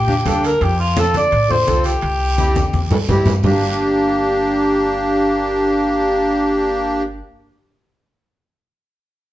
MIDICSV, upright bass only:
0, 0, Header, 1, 2, 480
1, 0, Start_track
1, 0, Tempo, 353565
1, 825, Time_signature, 4, 2, 24, 8
1, 12662, End_track
2, 0, Start_track
2, 0, Title_t, "Upright bass"
2, 0, Program_c, 0, 32
2, 0, Note_on_c, 0, 46, 98
2, 248, Note_off_c, 0, 46, 0
2, 346, Note_on_c, 0, 38, 84
2, 729, Note_off_c, 0, 38, 0
2, 826, Note_on_c, 0, 41, 110
2, 1593, Note_off_c, 0, 41, 0
2, 1790, Note_on_c, 0, 45, 98
2, 2171, Note_off_c, 0, 45, 0
2, 2267, Note_on_c, 0, 36, 86
2, 2650, Note_off_c, 0, 36, 0
2, 2749, Note_on_c, 0, 36, 96
2, 3514, Note_off_c, 0, 36, 0
2, 3709, Note_on_c, 0, 40, 93
2, 4090, Note_off_c, 0, 40, 0
2, 4190, Note_on_c, 0, 43, 82
2, 4571, Note_off_c, 0, 43, 0
2, 4667, Note_on_c, 0, 31, 82
2, 9767, Note_off_c, 0, 31, 0
2, 12662, End_track
0, 0, End_of_file